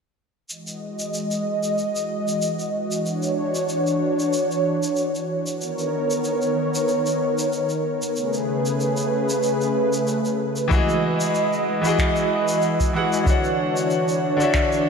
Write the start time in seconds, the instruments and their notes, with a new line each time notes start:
0.50 analog synth pad E3 G#3 F#4 D#5, shaker
0.67 shaker
0.99 shaker
1.14 shaker
1.31 shaker
1.63 shaker
1.78 shaker
1.96 shaker
2.28 shaker
2.42 shaker
2.59 shaker
2.91 shaker
3.06 analog synth pad D4 C#5, shaker
3.22 shaker
3.55 shaker
3.69 shaker
3.87 shaker
4.19 shaker
4.33 shaker
4.51 shaker
4.83 shaker
4.96 shaker
5.15 shaker
5.46 shaker
5.61 analog synth pad D#3 B3 A#4 C#5, shaker
5.78 shaker
6.11 shaker
6.24 shaker
6.42 shaker
6.75 shaker
6.88 shaker
7.06 shaker
7.38 shaker
7.52 shaker
7.69 shaker
8.02 shaker
8.16 analog synth pad C#3 A3 G#4 B4, shaker
8.33 shaker
8.66 shaker
8.80 shaker
8.97 shaker
9.29 shaker
9.43 shaker
9.61 shaker
9.93 shaker
10.07 shaker
10.25 shaker
10.56 shaker
10.68 grand piano E3 E4 F#4, analog synth pad E3 G#3 F#4 D#5, kick, shaker
10.73 grand piano G#4 D#5
10.89 shaker
11.20 shaker
11.35 shaker
11.53 shaker
11.81 grand piano E3 E4 F#4, shaker
11.87 grand piano G#4 D#5
11.99 finger snap, kick, shaker
12.16 shaker
12.48 shaker
12.62 shaker
12.80 kick, shaker
12.93 grand piano E3 E4 F#4 G#4 F#5
13.13 shaker
13.23 grand piano D3 D4 F#4, analog synth pad D4 C#5, kick, shaker
13.28 grand piano C#5 F#5
13.44 shaker
13.76 shaker
13.90 shaker
14.08 shaker
14.37 grand piano D3 D4 F#4, shaker
14.42 grand piano C#5 E5
14.54 finger snap, kick, shaker
14.72 shaker